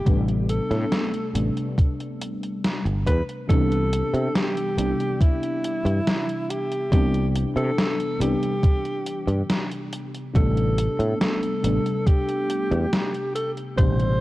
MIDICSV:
0, 0, Header, 1, 5, 480
1, 0, Start_track
1, 0, Tempo, 857143
1, 36, Time_signature, 4, 2, 24, 8
1, 7955, End_track
2, 0, Start_track
2, 0, Title_t, "Alto saxophone"
2, 0, Program_c, 0, 65
2, 0, Note_on_c, 0, 67, 103
2, 126, Note_off_c, 0, 67, 0
2, 279, Note_on_c, 0, 69, 114
2, 735, Note_off_c, 0, 69, 0
2, 1718, Note_on_c, 0, 71, 107
2, 1807, Note_off_c, 0, 71, 0
2, 1955, Note_on_c, 0, 69, 115
2, 2436, Note_on_c, 0, 67, 103
2, 2445, Note_off_c, 0, 69, 0
2, 2916, Note_on_c, 0, 64, 111
2, 2924, Note_off_c, 0, 67, 0
2, 3637, Note_on_c, 0, 67, 94
2, 3646, Note_off_c, 0, 64, 0
2, 3877, Note_off_c, 0, 67, 0
2, 3879, Note_on_c, 0, 67, 104
2, 4072, Note_off_c, 0, 67, 0
2, 4239, Note_on_c, 0, 69, 110
2, 4575, Note_off_c, 0, 69, 0
2, 4602, Note_on_c, 0, 67, 97
2, 5297, Note_off_c, 0, 67, 0
2, 5799, Note_on_c, 0, 69, 100
2, 6255, Note_off_c, 0, 69, 0
2, 6276, Note_on_c, 0, 69, 97
2, 6758, Note_on_c, 0, 67, 105
2, 6766, Note_off_c, 0, 69, 0
2, 7473, Note_off_c, 0, 67, 0
2, 7477, Note_on_c, 0, 69, 96
2, 7566, Note_off_c, 0, 69, 0
2, 7717, Note_on_c, 0, 72, 123
2, 7955, Note_off_c, 0, 72, 0
2, 7955, End_track
3, 0, Start_track
3, 0, Title_t, "FM electric piano"
3, 0, Program_c, 1, 5
3, 0, Control_c, 1, 64, 127
3, 27, Note_on_c, 1, 48, 98
3, 31, Note_on_c, 1, 55, 86
3, 35, Note_on_c, 1, 57, 85
3, 39, Note_on_c, 1, 59, 92
3, 43, Note_on_c, 1, 62, 104
3, 723, Note_off_c, 1, 48, 0
3, 725, Note_off_c, 1, 55, 0
3, 727, Note_off_c, 1, 57, 0
3, 729, Note_off_c, 1, 59, 0
3, 731, Note_off_c, 1, 62, 0
3, 748, Note_on_c, 1, 48, 72
3, 752, Note_on_c, 1, 55, 72
3, 757, Note_on_c, 1, 57, 66
3, 761, Note_on_c, 1, 59, 67
3, 765, Note_on_c, 1, 62, 81
3, 1924, Note_off_c, 1, 48, 0
3, 1926, Note_off_c, 1, 55, 0
3, 1928, Note_off_c, 1, 57, 0
3, 1930, Note_off_c, 1, 59, 0
3, 1932, Note_off_c, 1, 62, 0
3, 1946, Note_on_c, 1, 48, 98
3, 1952, Note_on_c, 1, 52, 92
3, 1955, Note_on_c, 1, 55, 90
3, 1959, Note_on_c, 1, 59, 85
3, 1962, Control_c, 1, 64, 0
3, 1964, Note_on_c, 1, 62, 108
3, 2048, Control_c, 1, 64, 127
3, 2643, Note_off_c, 1, 48, 0
3, 2645, Note_off_c, 1, 52, 0
3, 2647, Note_off_c, 1, 55, 0
3, 2649, Note_off_c, 1, 59, 0
3, 2652, Note_off_c, 1, 62, 0
3, 2666, Note_on_c, 1, 48, 78
3, 2670, Note_on_c, 1, 52, 67
3, 2674, Note_on_c, 1, 55, 67
3, 2678, Note_on_c, 1, 59, 67
3, 2683, Note_on_c, 1, 62, 84
3, 3842, Note_off_c, 1, 48, 0
3, 3845, Note_off_c, 1, 52, 0
3, 3846, Note_off_c, 1, 55, 0
3, 3849, Note_off_c, 1, 59, 0
3, 3851, Note_off_c, 1, 62, 0
3, 3868, Note_on_c, 1, 48, 95
3, 3872, Note_on_c, 1, 52, 87
3, 3876, Note_on_c, 1, 55, 87
3, 3881, Note_on_c, 1, 59, 90
3, 3885, Note_on_c, 1, 62, 110
3, 4563, Note_off_c, 1, 48, 0
3, 4566, Note_off_c, 1, 52, 0
3, 4568, Note_off_c, 1, 55, 0
3, 4570, Note_off_c, 1, 59, 0
3, 4572, Note_off_c, 1, 62, 0
3, 4587, Note_on_c, 1, 48, 74
3, 4592, Note_on_c, 1, 52, 71
3, 4595, Note_on_c, 1, 55, 69
3, 4600, Note_on_c, 1, 59, 72
3, 4604, Note_on_c, 1, 62, 86
3, 5763, Note_off_c, 1, 48, 0
3, 5766, Note_off_c, 1, 52, 0
3, 5767, Note_off_c, 1, 55, 0
3, 5770, Note_off_c, 1, 59, 0
3, 5772, Note_off_c, 1, 62, 0
3, 5788, Note_on_c, 1, 48, 97
3, 5791, Note_on_c, 1, 55, 91
3, 5795, Note_on_c, 1, 57, 91
3, 5800, Note_on_c, 1, 59, 91
3, 5804, Control_c, 1, 64, 0
3, 5805, Note_on_c, 1, 62, 104
3, 5903, Control_c, 1, 64, 127
3, 6484, Note_off_c, 1, 48, 0
3, 6485, Note_off_c, 1, 55, 0
3, 6487, Note_off_c, 1, 57, 0
3, 6490, Note_off_c, 1, 59, 0
3, 6492, Note_off_c, 1, 62, 0
3, 6509, Note_on_c, 1, 48, 76
3, 6513, Note_on_c, 1, 55, 72
3, 6516, Note_on_c, 1, 57, 73
3, 6521, Note_on_c, 1, 59, 71
3, 6526, Note_on_c, 1, 62, 87
3, 7684, Note_off_c, 1, 48, 0
3, 7686, Note_off_c, 1, 55, 0
3, 7687, Note_off_c, 1, 57, 0
3, 7690, Note_off_c, 1, 59, 0
3, 7692, Note_off_c, 1, 62, 0
3, 7708, Note_on_c, 1, 48, 101
3, 7713, Note_on_c, 1, 55, 91
3, 7717, Note_on_c, 1, 57, 91
3, 7721, Note_on_c, 1, 47, 91
3, 7724, Note_on_c, 1, 62, 106
3, 7955, Note_off_c, 1, 47, 0
3, 7955, Note_off_c, 1, 48, 0
3, 7955, Note_off_c, 1, 55, 0
3, 7955, Note_off_c, 1, 57, 0
3, 7955, Note_off_c, 1, 62, 0
3, 7955, End_track
4, 0, Start_track
4, 0, Title_t, "Fretless electric bass"
4, 0, Program_c, 2, 35
4, 35, Note_on_c, 2, 33, 104
4, 326, Note_off_c, 2, 33, 0
4, 397, Note_on_c, 2, 45, 91
4, 473, Note_off_c, 2, 45, 0
4, 756, Note_on_c, 2, 33, 83
4, 833, Note_off_c, 2, 33, 0
4, 1597, Note_on_c, 2, 31, 93
4, 1716, Note_on_c, 2, 40, 94
4, 1724, Note_off_c, 2, 31, 0
4, 1793, Note_off_c, 2, 40, 0
4, 1956, Note_on_c, 2, 36, 98
4, 2246, Note_off_c, 2, 36, 0
4, 2316, Note_on_c, 2, 48, 94
4, 2392, Note_off_c, 2, 48, 0
4, 2675, Note_on_c, 2, 36, 82
4, 2753, Note_off_c, 2, 36, 0
4, 3274, Note_on_c, 2, 43, 99
4, 3352, Note_off_c, 2, 43, 0
4, 3874, Note_on_c, 2, 36, 105
4, 4166, Note_off_c, 2, 36, 0
4, 4233, Note_on_c, 2, 48, 95
4, 4311, Note_off_c, 2, 48, 0
4, 4593, Note_on_c, 2, 36, 81
4, 4672, Note_off_c, 2, 36, 0
4, 5194, Note_on_c, 2, 43, 97
4, 5272, Note_off_c, 2, 43, 0
4, 5796, Note_on_c, 2, 33, 100
4, 6087, Note_off_c, 2, 33, 0
4, 6156, Note_on_c, 2, 45, 94
4, 6233, Note_off_c, 2, 45, 0
4, 6517, Note_on_c, 2, 33, 83
4, 6594, Note_off_c, 2, 33, 0
4, 7118, Note_on_c, 2, 40, 100
4, 7193, Note_off_c, 2, 40, 0
4, 7716, Note_on_c, 2, 33, 104
4, 7955, Note_off_c, 2, 33, 0
4, 7955, End_track
5, 0, Start_track
5, 0, Title_t, "Drums"
5, 35, Note_on_c, 9, 36, 107
5, 37, Note_on_c, 9, 42, 66
5, 91, Note_off_c, 9, 36, 0
5, 93, Note_off_c, 9, 42, 0
5, 158, Note_on_c, 9, 42, 41
5, 214, Note_off_c, 9, 42, 0
5, 276, Note_on_c, 9, 42, 92
5, 332, Note_off_c, 9, 42, 0
5, 399, Note_on_c, 9, 38, 35
5, 399, Note_on_c, 9, 42, 40
5, 455, Note_off_c, 9, 38, 0
5, 455, Note_off_c, 9, 42, 0
5, 516, Note_on_c, 9, 38, 116
5, 516, Note_on_c, 9, 42, 67
5, 572, Note_off_c, 9, 38, 0
5, 572, Note_off_c, 9, 42, 0
5, 638, Note_on_c, 9, 42, 41
5, 694, Note_off_c, 9, 42, 0
5, 759, Note_on_c, 9, 42, 97
5, 815, Note_off_c, 9, 42, 0
5, 879, Note_on_c, 9, 42, 41
5, 935, Note_off_c, 9, 42, 0
5, 996, Note_on_c, 9, 36, 122
5, 999, Note_on_c, 9, 42, 67
5, 1052, Note_off_c, 9, 36, 0
5, 1055, Note_off_c, 9, 42, 0
5, 1120, Note_on_c, 9, 42, 39
5, 1176, Note_off_c, 9, 42, 0
5, 1239, Note_on_c, 9, 42, 96
5, 1295, Note_off_c, 9, 42, 0
5, 1361, Note_on_c, 9, 42, 41
5, 1417, Note_off_c, 9, 42, 0
5, 1480, Note_on_c, 9, 38, 119
5, 1480, Note_on_c, 9, 42, 69
5, 1536, Note_off_c, 9, 38, 0
5, 1536, Note_off_c, 9, 42, 0
5, 1601, Note_on_c, 9, 42, 39
5, 1657, Note_off_c, 9, 42, 0
5, 1716, Note_on_c, 9, 36, 62
5, 1720, Note_on_c, 9, 42, 96
5, 1772, Note_off_c, 9, 36, 0
5, 1776, Note_off_c, 9, 42, 0
5, 1842, Note_on_c, 9, 42, 40
5, 1898, Note_off_c, 9, 42, 0
5, 1956, Note_on_c, 9, 36, 117
5, 1961, Note_on_c, 9, 42, 71
5, 2012, Note_off_c, 9, 36, 0
5, 2017, Note_off_c, 9, 42, 0
5, 2082, Note_on_c, 9, 42, 44
5, 2138, Note_off_c, 9, 42, 0
5, 2200, Note_on_c, 9, 42, 97
5, 2256, Note_off_c, 9, 42, 0
5, 2321, Note_on_c, 9, 42, 43
5, 2377, Note_off_c, 9, 42, 0
5, 2438, Note_on_c, 9, 38, 122
5, 2438, Note_on_c, 9, 42, 73
5, 2494, Note_off_c, 9, 38, 0
5, 2494, Note_off_c, 9, 42, 0
5, 2559, Note_on_c, 9, 42, 42
5, 2615, Note_off_c, 9, 42, 0
5, 2679, Note_on_c, 9, 42, 99
5, 2735, Note_off_c, 9, 42, 0
5, 2800, Note_on_c, 9, 42, 43
5, 2856, Note_off_c, 9, 42, 0
5, 2915, Note_on_c, 9, 36, 118
5, 2918, Note_on_c, 9, 42, 67
5, 2971, Note_off_c, 9, 36, 0
5, 2974, Note_off_c, 9, 42, 0
5, 3040, Note_on_c, 9, 42, 41
5, 3096, Note_off_c, 9, 42, 0
5, 3159, Note_on_c, 9, 42, 97
5, 3215, Note_off_c, 9, 42, 0
5, 3281, Note_on_c, 9, 42, 43
5, 3337, Note_off_c, 9, 42, 0
5, 3399, Note_on_c, 9, 38, 127
5, 3399, Note_on_c, 9, 42, 72
5, 3455, Note_off_c, 9, 38, 0
5, 3455, Note_off_c, 9, 42, 0
5, 3521, Note_on_c, 9, 42, 41
5, 3577, Note_off_c, 9, 42, 0
5, 3640, Note_on_c, 9, 42, 102
5, 3696, Note_off_c, 9, 42, 0
5, 3760, Note_on_c, 9, 42, 42
5, 3816, Note_off_c, 9, 42, 0
5, 3874, Note_on_c, 9, 36, 121
5, 3879, Note_on_c, 9, 42, 72
5, 3930, Note_off_c, 9, 36, 0
5, 3935, Note_off_c, 9, 42, 0
5, 4000, Note_on_c, 9, 42, 44
5, 4056, Note_off_c, 9, 42, 0
5, 4119, Note_on_c, 9, 42, 101
5, 4175, Note_off_c, 9, 42, 0
5, 4239, Note_on_c, 9, 42, 42
5, 4295, Note_off_c, 9, 42, 0
5, 4359, Note_on_c, 9, 38, 126
5, 4359, Note_on_c, 9, 42, 69
5, 4415, Note_off_c, 9, 38, 0
5, 4415, Note_off_c, 9, 42, 0
5, 4479, Note_on_c, 9, 42, 41
5, 4535, Note_off_c, 9, 42, 0
5, 4599, Note_on_c, 9, 42, 97
5, 4655, Note_off_c, 9, 42, 0
5, 4720, Note_on_c, 9, 42, 42
5, 4776, Note_off_c, 9, 42, 0
5, 4835, Note_on_c, 9, 36, 126
5, 4838, Note_on_c, 9, 42, 67
5, 4891, Note_off_c, 9, 36, 0
5, 4894, Note_off_c, 9, 42, 0
5, 4958, Note_on_c, 9, 42, 40
5, 5014, Note_off_c, 9, 42, 0
5, 5077, Note_on_c, 9, 42, 104
5, 5133, Note_off_c, 9, 42, 0
5, 5199, Note_on_c, 9, 42, 42
5, 5255, Note_off_c, 9, 42, 0
5, 5318, Note_on_c, 9, 38, 127
5, 5318, Note_on_c, 9, 42, 74
5, 5374, Note_off_c, 9, 38, 0
5, 5374, Note_off_c, 9, 42, 0
5, 5439, Note_on_c, 9, 42, 41
5, 5495, Note_off_c, 9, 42, 0
5, 5558, Note_on_c, 9, 42, 103
5, 5614, Note_off_c, 9, 42, 0
5, 5681, Note_on_c, 9, 42, 43
5, 5737, Note_off_c, 9, 42, 0
5, 5796, Note_on_c, 9, 36, 122
5, 5800, Note_on_c, 9, 42, 66
5, 5852, Note_off_c, 9, 36, 0
5, 5856, Note_off_c, 9, 42, 0
5, 5921, Note_on_c, 9, 42, 41
5, 5977, Note_off_c, 9, 42, 0
5, 6039, Note_on_c, 9, 42, 96
5, 6095, Note_off_c, 9, 42, 0
5, 6160, Note_on_c, 9, 42, 41
5, 6216, Note_off_c, 9, 42, 0
5, 6279, Note_on_c, 9, 38, 123
5, 6279, Note_on_c, 9, 42, 67
5, 6335, Note_off_c, 9, 38, 0
5, 6335, Note_off_c, 9, 42, 0
5, 6400, Note_on_c, 9, 42, 44
5, 6456, Note_off_c, 9, 42, 0
5, 6519, Note_on_c, 9, 42, 98
5, 6575, Note_off_c, 9, 42, 0
5, 6642, Note_on_c, 9, 42, 44
5, 6698, Note_off_c, 9, 42, 0
5, 6757, Note_on_c, 9, 36, 127
5, 6759, Note_on_c, 9, 42, 71
5, 6813, Note_off_c, 9, 36, 0
5, 6815, Note_off_c, 9, 42, 0
5, 6879, Note_on_c, 9, 42, 40
5, 6935, Note_off_c, 9, 42, 0
5, 6997, Note_on_c, 9, 42, 98
5, 7053, Note_off_c, 9, 42, 0
5, 7120, Note_on_c, 9, 42, 42
5, 7176, Note_off_c, 9, 42, 0
5, 7239, Note_on_c, 9, 38, 127
5, 7239, Note_on_c, 9, 42, 71
5, 7295, Note_off_c, 9, 38, 0
5, 7295, Note_off_c, 9, 42, 0
5, 7359, Note_on_c, 9, 42, 39
5, 7415, Note_off_c, 9, 42, 0
5, 7479, Note_on_c, 9, 42, 100
5, 7535, Note_off_c, 9, 42, 0
5, 7599, Note_on_c, 9, 42, 42
5, 7655, Note_off_c, 9, 42, 0
5, 7716, Note_on_c, 9, 36, 124
5, 7718, Note_on_c, 9, 42, 64
5, 7772, Note_off_c, 9, 36, 0
5, 7774, Note_off_c, 9, 42, 0
5, 7838, Note_on_c, 9, 42, 39
5, 7894, Note_off_c, 9, 42, 0
5, 7955, End_track
0, 0, End_of_file